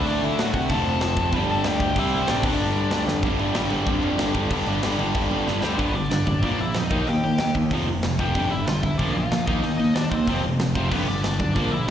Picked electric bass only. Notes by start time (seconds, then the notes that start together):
0.06 D2
0.22 D3
0.38 A2
0.54 C3
0.70 F1
0.86 F1
1.02 F1
1.17 F1
1.33 G1
1.65 D2
1.96 C2
2.28 A1
2.43 G1
2.60 G1
2.76 G2
2.91 D2
3.07 F2
3.23 G1
3.39 G1
3.55 G1
3.71 G1
3.87 F2
4.19 G1
4.35 G1
4.51 G1
4.67 G1
4.83 G1
4.99 G1
5.15 G1
5.31 G1
5.46 G1
5.63 D2
5.79 G1
5.95 G1
6.11 G1
6.27 A1
6.43 A#1
6.58 A#1
6.74 F2
6.90 D#2
7.07 D#2
7.22 D#2
7.39 D#2
7.55 D#2
7.71 F1
7.87 F1
8.03 F1
8.19 F1
8.35 G1
8.51 G1
8.67 G1
8.83 G1
8.99 A#1
9.16 A#1
9.31 E2
9.47 D#2
9.64 D#2
9.79 D#2
9.96 D#2
10.11 D#2
10.27 F1
10.44 F1
10.59 F1
10.75 F1
10.91 G1
11.08 G1
11.24 G1
11.40 B1
11.56 A#1
11.72 A#1